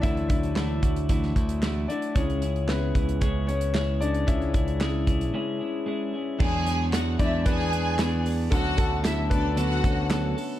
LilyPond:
<<
  \new Staff \with { instrumentName = "Violin section" } { \time 4/4 \key cis \phrygian \tempo 4 = 113 r1 | r1 | r1 | <gis' gis''>4 <fis' fis''>8 <e' e''>8 <gis' gis''>4. r8 |
<fis' fis''>4 <e' e''>8 <d' d''>8 <fis' fis''>4. r8 | }
  \new Staff \with { instrumentName = "Clean electric guitar" } { \time 4/4 \key cis \phrygian <d e a e' fis'>8 <a e' fis'>8 <e a e' fis'>8 <a e' fis'>8 <d e a e' fis'>8 <a e' fis'>8 <e a e' fis'>8 <a e' fis'>8 | <cis gis cis' e' gis'>8 <cis' e' gis'>8 <gis cis' e' gis'>8 <cis' e' gis'>8 <cis gis cis' e' gis'>8 <cis' e' gis'>8 <gis cis' e' gis'>8 <cis' e' gis'>8 | <cis gis cis' e' gis'>8 <cis' e' gis'>8 <gis cis' e' gis'>8 <cis' e' gis'>8 <cis gis cis' e' gis'>8 <cis' e' gis'>8 <gis cis' e' gis'>8 <cis' e' gis'>8 | <e b d' gis'>8 <b d' gis'>8 <e b d' gis'>8 <b d' gis'>8 <e b d' gis'>8 <b d' gis'>8 <e b d' gis'>8 <b d' gis'>8 |
<d fis b fis' a'>8 <b fis' a'>8 <fis b fis' a'>8 <b fis' a'>8 <d fis b fis' a'>8 <b fis' a'>8 <fis b fis' a'>8 <b fis' a'>8 | }
  \new Staff \with { instrumentName = "Grand piano" } { \time 4/4 \key cis \phrygian << { <e' e''>8 e''4. r4. <d' d''>8 | cis''4 <b b'>4 <cis' cis''>8 <cis' cis''>4 <d' d''>8 | e''2 r2 | r4. d''8 <b b'>2 |
a'8 <a a'>4 <b b'>2 r8 | } \\ { r8 <fis d' e'>8 r4 <fis d' e'>8 r4. | <gis cis' e'>4. r2 r8 | <gis cis' e'>8 r4. <gis cis' e'>8 r4. | <fis gis d'>8 r4 <fis gis d'>8 r2 |
<d a cis'>4. r4 <d a cis'>8 r4 | } >> }
  \new Staff \with { instrumentName = "Picked electric bass" } { \clef bass \time 4/4 \key cis \phrygian d,2~ d,8 d,4 r8 | cis,4. cis,2~ cis,8 | cis,2 r2 | e,4. e,2~ e,8 |
d,2~ d,8 d,4 r8 | }
  \new DrumStaff \with { instrumentName = "Drums" } \drummode { \time 4/4 <hh bd>16 hh16 <hh bd>16 hh16 <hc sn>8 <hh bd>16 hh16 <hh bd>16 sn16 <hh bd>16 hh16 <hc sn>8 hh16 hh16 | <hh bd>16 hh16 hh16 hh16 <hc sn>8 <hh bd>16 hh16 <hh bd>8 hh16 hh16 <hc sn>8 hh16 hh16 | <hh bd>16 hh16 <hh bd>16 hh16 <hc sn>8 <hh bd>16 hh16 r4 r4 | <cymc bd>8 hh8 <hc hh sn>8 <hh bd>8 <hh bd>16 sn16 hh8 <hc hh sn>8 hho8 |
<hh bd>8 <hh bd>8 <hc hh sn>8 <hh bd>8 hh16 sn16 <hh bd>8 <hc hh sn>8 hho8 | }
>>